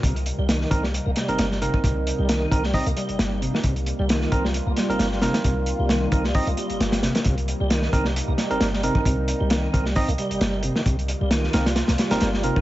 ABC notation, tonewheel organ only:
X:1
M:4/4
L:1/16
Q:"Swing 16ths" 1/4=133
K:Cm
V:1 name="Tonewheel organ" clef=bass
C, z2 G, E,3 G, z B, G,4 C, E, | C, z2 G, E,3 G, z B, G,4 C, E, | C, z2 G, E,3 G, z B, G,4 C, E, | C, z2 G, E,3 G, z B, G,4 C, E, |
C, z2 G, E,3 G, z B, G,4 C, E, | C, z2 G, E,3 G, z B, G,4 C, E, | C, z2 G, E,3 G, z B, G,4 C, E, |]